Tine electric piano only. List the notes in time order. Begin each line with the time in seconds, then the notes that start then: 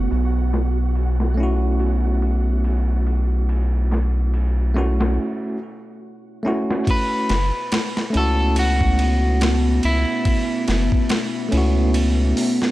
Already playing: E4 F#4
1.34 A3 C#4
1.40 E4 F#4
4.74 A3 C#4 E4
4.78 F#4
6.43 A3 C#4 E4
6.48 F#4
8.10 A3 C#4
8.16 E4 F#4
11.49 A3 C#4
11.54 E4 F#4